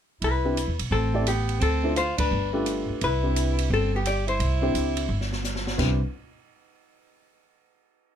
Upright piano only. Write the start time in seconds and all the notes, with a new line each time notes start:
0.45 C4 D4 E4 G4 B4
1.14 A3 C4 E4 G4 D5
1.83 A3 D4 E4 F4 C5
2.53 A3 D4 F4 G4 B4
3.23 C4 D4 E4 G4 B4
4.62 C4 D4 E4 G4 C5
5.78 C4 D4 E4 G4 B4